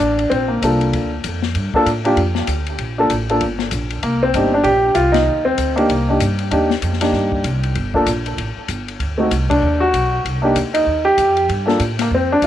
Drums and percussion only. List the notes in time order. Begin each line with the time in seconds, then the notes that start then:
0.19 ride
0.31 kick, ride
0.62 kick, hi-hat pedal, ride
0.81 ride
0.93 kick, ride
1.24 kick, hi-hat pedal, ride
1.42 snare
1.55 kick, ride
1.74 kick
1.86 kick, hi-hat pedal, ride
2.05 ride
2.17 kick, ride
2.35 snare
2.47 kick, hi-hat pedal, ride
2.66 ride
2.78 kick, ride
3.10 kick, hi-hat pedal, ride
3.29 ride
3.41 kick, ride
3.59 snare
3.71 kick, hi-hat pedal, ride
3.90 ride
4.03 kick, ride
4.34 kick, hi-hat pedal, ride
4.64 kick, ride
4.95 kick, hi-hat pedal, ride
5.14 snare, ride
5.58 kick, hi-hat pedal, ride
5.77 ride
5.89 kick, ride
6.20 kick, hi-hat pedal, ride
6.39 ride
6.51 kick, ride
6.70 snare
6.82 kick, hi-hat pedal, ride
6.93 snare
7.01 snare, ride
7.13 kick, snare
7.32 kick
7.44 kick, hi-hat pedal, ride
7.63 ride
7.75 kick, ride
7.94 kick
8.06 kick, hi-hat pedal, ride
8.26 ride
8.37 kick, ride
8.68 kick, hi-hat pedal, ride
8.88 ride
9.00 kick, ride
9.31 kick, hi-hat pedal, ride
9.50 kick, ride
9.93 kick, hi-hat pedal, ride
10.25 kick, ride
10.56 kick, hi-hat pedal, ride
10.74 ride
10.87 kick
11.18 kick, hi-hat pedal, ride
11.37 ride
11.49 kick, ride
11.68 snare
11.80 kick, hi-hat pedal, ride
11.99 snare, ride
12.11 kick
12.42 kick, hi-hat pedal, ride